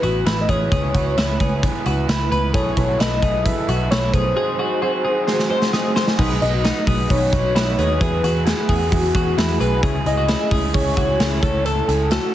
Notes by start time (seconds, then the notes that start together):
Already playing: B4
0.02 A1 B3 E4 F#4 B4, closed hi-hat
0.25 A1 A3 B3 E4 B4, snare, closed hi-hat
0.41 D#5
0.48 A1 B3 E4 G#4 B4 C#5, kick, closed hi-hat
0.71 C#2 C#3 G#3 B3 E4 G#4 B4, kick, closed hi-hat
0.93 C#2 B3 E4 F#4 B4, kick, closed hi-hat
1.16 C#2 G#3 B3 E4 B4, snare, closed hi-hat
1.39 C#2 B3 E4 G#4 B4, kick, closed hi-hat
1.62 C#3 G#3 B3 E4 B4, kick, closed hi-hat
1.85 C#2 B3 E4 F#4 B4, closed hi-hat
2.08 C#2 G#3 B3 E4 B4, snare, closed hi-hat
2.30 C#2 B3 E4 B4, closed hi-hat
2.53 B1 B2 E3 F#3 B3 E4 G#4 A4 B4 C#5, kick, closed hi-hat
2.76 B1 F#3 B3 E4 A4 B4, kick, closed hi-hat
2.89 F#4
2.99 B1 F#3 B3 E4 A4 B4 D#5, snare, closed hi-hat
3.22 B1 F#3 B3 E4 G#4 A4 B4, kick, closed hi-hat
3.45 B2 E3 F#3 B3 E4 A4 B4 E5, kick, closed hi-hat
3.67 B1 F#3 B3 E4 F#4 A4 B4, closed hi-hat
3.90 B1 F#3 B3 E4 A4 C#5, snare, closed hi-hat
4.13 B1 F#3 B3 E4 G#4 A4 B4 C5, kick, closed hi-hat
4.35 G#2 D#3 F#3 C4 D#4 F#4 G#4 C5
4.59 F#3 C4 D#4 F#4 G#4 D#5
4.81 F#3 C4 D#4 F#4 G#4 C5
5.04 F#3 C4 D#4 F#4 G#4 C5
5.27 G#2 D#3 F#3 C4 D#4 F#4 G#4 C5, snare
5.39 snare
5.49 F#3 C4 D#4 F#4 G#4 C5
5.62 snare
5.72 F#3 C4 D#4 F#4 G#4 C5, snare
5.95 F#3 C4 D#4 F#4 G#4 C5, snare
6.07 snare
6.18 B1 B2 D#3 F#3 B3 D#4 F#4 G#4 B4, kick, crash
6.41 B1 F#3 B3 D#4 F#4 B4 D#5, hi-hat pedal, open hi-hat
6.53 F#4
6.63 F#3 B3 D#4 F#4 B4, snare, hi-hat pedal, open hi-hat
6.86 B1 F#3 B3 D#4 F#4 G#4 B4, kick, hi-hat pedal, open hi-hat
7.09 B1 B2 D#3 F#3 B3 D#4 F#4 B4 C#5, kick, hi-hat pedal, open hi-hat
7.31 B1 F#3 B3 D#4 F#4 B4, kick, hi-hat pedal, open hi-hat
7.54 B1 F#3 B3 D#4 E4 F#4 B4, snare, hi-hat pedal, open hi-hat
7.77 D#2 F#3 B3 D#4 F#4 G#4 B4, hi-hat pedal, open hi-hat
8.00 E2 E3 F#3 B3 E4 F#4 G#4 B4, kick, hi-hat pedal, open hi-hat
8.23 E2 B3 E4 F#4 G#4, hi-hat pedal, open hi-hat
8.45 F#3 B3 E4 F#4 G#4, snare, hi-hat pedal, open hi-hat
8.49 G#4
8.68 E2 B3 E4 F#4 G#4, kick, hi-hat pedal, open hi-hat
8.91 E2 E3 F#3 B3 E4 F#4 G#4, kick, hi-hat pedal, open hi-hat
9.13 E2 B3 E4 F#4 G#4, kick, hi-hat pedal, open hi-hat
9.36 E2 F#3 B3 E4 F#4 G#4, snare, hi-hat pedal, open hi-hat
9.59 B1 B3 E4 F#4 G#4 B4, hi-hat pedal, open hi-hat
9.82 C#2 C#3 G#3 C#4 E4 G#4, kick, hi-hat pedal, open hi-hat
10.04 C#2 C#4 E4 G#4 D#5, hi-hat pedal, open hi-hat
10.17 F#4
10.27 G#3 C#4 E4 G#4, snare, hi-hat pedal, open hi-hat
10.50 C#2 C#4 E4 G#4, kick, hi-hat pedal, open hi-hat
10.73 C#2 C#3 G#3 C#4 E4 G#4 C#5, kick, hi-hat pedal, open hi-hat
10.96 C#2 C#4 E4 F#4 G#4, kick, hi-hat pedal, open hi-hat
11.18 C#2 G#3 C#4 E4 G#4, snare, hi-hat pedal, open hi-hat
11.41 C#2 C#4 E4 A4, kick, hi-hat pedal, open hi-hat
11.64 C#3 A3 C#4 E4 A4, hi-hat pedal, open hi-hat
11.86 C#2 C#4 E4 G#4 A4, hi-hat pedal, open hi-hat
12.10 A3 C#4 E4 F#4 A4, snare, hi-hat pedal, open hi-hat